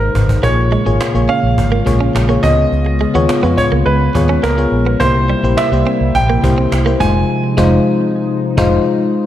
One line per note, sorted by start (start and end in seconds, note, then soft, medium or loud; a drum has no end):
0.00 0.46 G#2 medium
0.00 0.40 C3 medium
0.00 0.39 G#3 medium
0.00 0.39 A#3 medium
0.00 0.43 A#3 medium
0.00 0.40 D#4 medium
0.00 0.46 D#4 medium
0.00 0.44 G#4 medium
0.00 0.45 A#4 medium
0.00 0.45 B4 medium
0.00 0.11 C5 medium
0.00 0.46 C5 medium
0.15 0.36 G#1 medium
0.15 cajon bass medium
0.29 cajon bass medium
0.43 0.76 A#1 loud
0.43 1.25 A#2 medium
0.43 4.97 C#3 medium
0.43 4.97 G#3 medium
0.43 0.72 A#3 medium
0.43 0.55 A#3 medium
0.43 2.42 A#3 medium
0.43 0.72 F4 medium
0.43 4.97 F4 medium
0.43 0.73 G#4 medium
0.43 1.32 C#5 medium
0.43 0.73 C#5 medium
0.43 cajon bass loud
0.72 0.83 G#3 medium
0.72 cajon slap soft
0.85 0.97 G#1 medium
0.85 1.05 A#3 medium
0.85 1.05 F4 medium
0.85 1.06 G#4 medium
0.85 1.06 C#5 medium
0.85 muted clean electric guitar stroke soft
1.01 cajon slap loud
1.14 1.26 A#1 medium
1.14 1.63 A#3 medium
1.14 1.63 F4 medium
1.14 1.63 G#4 medium
1.14 1.64 C#5 medium
1.29 1.40 C#4 medium
1.29 2.11 F5 medium
1.29 cajon slap soft
1.43 1.54 A#1 medium
1.58 1.79 G#1 medium
1.58 cajon bass medium
1.72 1.83 A#3 medium
1.85 2.08 A#1 medium
1.85 2.15 A#3 medium
1.85 2.15 F4 medium
1.85 2.15 G#4 medium
1.85 2.16 C#5 medium
1.85 muted clean electric guitar stroke soft
1.85 cajon bass medium
2.01 2.12 C#4 medium
2.15 2.36 A#1 medium
2.15 muted clean electric guitar stroke soft
2.15 cajon slap loud
2.28 2.43 A#3 medium
2.28 2.40 A#3 medium
2.28 2.42 F4 medium
2.28 2.42 G#4 medium
2.28 2.43 C#5 medium
2.43 2.65 C#2 medium
2.43 3.25 C#3 medium
2.43 2.55 G#3 medium
2.43 3.00 B3 medium
2.43 4.98 B3 medium
2.43 3.01 F4 medium
2.43 3.01 G#4 medium
2.43 3.01 C#5 medium
2.43 3.61 D#5 loud
2.43 cajon bass medium
2.72 3.04 C#2 loud
2.72 cajon slap soft
2.86 muted clean electric guitar stroke soft
3.01 3.12 G#3 medium
3.01 cajon slap soft
3.14 3.26 D#2 medium
3.14 3.34 B3 medium
3.14 3.26 B3 medium
3.14 3.34 F4 medium
3.14 3.34 G#4 medium
3.14 3.34 C#5 medium
3.29 cajon slap loud
3.43 3.54 F2 medium
3.43 3.92 B3 medium
3.43 3.54 B3 medium
3.43 3.92 F4 medium
3.43 3.92 G#4 medium
3.43 3.92 C#5 medium
3.57 3.64 C#5 medium
3.57 muted clean electric guitar stroke soft
3.57 cajon bass medium
3.72 3.83 C#2 medium
3.72 3.83 A#3 medium
3.86 4.08 C#2 medium
3.86 3.98 G#3 medium
3.86 4.45 B4 medium
3.86 cajon slap soft
4.14 4.36 D#2 medium
4.14 4.44 B3 medium
4.14 4.44 F4 medium
4.14 4.44 G#4 medium
4.14 4.44 C#5 medium
4.14 muted clean electric guitar stroke soft
4.14 cajon bass medium
4.29 4.40 C#4 medium
4.29 cajon slap soft
4.43 4.65 C#2 medium
4.43 4.55 A#3 medium
4.43 5.02 A#4 medium
4.43 cajon slap medium
4.57 4.86 B3 medium
4.57 4.87 F4 medium
4.57 4.87 G#4 medium
4.57 4.87 C#5 medium
4.57 muted clean electric guitar stroke soft
4.72 4.93 A#1 medium
4.86 4.98 B3 medium
5.00 5.33 C2 medium
5.00 9.26 C3 medium
5.00 5.82 C3 medium
5.00 6.99 G3 medium
5.00 5.29 A#3 medium
5.00 6.99 A#3 medium
5.00 5.12 A#3 medium
5.00 6.99 E4 medium
5.00 5.30 E4 medium
5.00 5.30 G4 medium
5.00 5.59 C5 medium
5.00 5.30 C5 medium
5.00 cajon bass loud
5.30 5.41 G3 medium
5.30 cajon slap soft
5.43 5.54 A#1 medium
5.43 5.63 A#3 medium
5.43 5.63 E4 medium
5.43 5.63 G4 medium
5.43 5.63 C5 medium
5.43 muted clean electric guitar stroke soft
5.57 6.16 E5 medium
5.57 cajon slap loud
5.72 5.83 C2 medium
5.72 6.20 A#3 medium
5.72 6.21 E4 medium
5.72 6.21 G4 medium
5.72 6.21 C5 medium
5.86 5.98 C4 medium
5.86 cajon slap soft
6.01 6.11 C2 medium
6.15 6.36 A#1 medium
6.15 7.03 G5 loud
6.15 cajon bass medium
6.30 6.41 A#3 medium
6.43 6.65 C2 medium
6.43 6.72 A#3 medium
6.43 6.73 E4 medium
6.43 6.73 G4 medium
6.43 6.73 C5 medium
6.43 muted clean electric guitar stroke soft
6.43 cajon bass medium
6.58 6.69 C4 medium
6.58 cajon slap soft
6.72 6.93 C2 medium
6.72 muted clean electric guitar stroke soft
6.72 cajon slap loud
6.86 7.00 A#3 medium
6.86 6.97 A#3 medium
6.86 7.01 E4 medium
6.86 7.01 G4 medium
6.86 7.00 C5 medium
7.00 7.22 F1 medium
7.00 9.26 F3 medium
7.00 7.29 G#3 medium
7.00 7.12 G#3 medium
7.00 9.26 G#3 medium
7.00 7.29 D#4 medium
7.00 9.26 D#4 medium
7.00 7.29 F4 medium
7.00 7.29 C5 medium
7.00 8.96 G#5 medium
7.00 cajon bass loud
7.57 7.77 F1 loud
7.57 7.77 G#3 medium
7.57 7.77 D#4 loud
7.57 7.77 F4 medium
7.57 7.77 C5 medium
7.57 cajon bass loud
7.57 cajon slap medium
8.57 8.77 F1 loud
8.57 8.77 G#3 loud
8.57 8.77 D#4 loud
8.57 8.77 F4 loud
8.57 8.78 C5 loud
8.57 cajon bass loud
8.57 cajon slap loud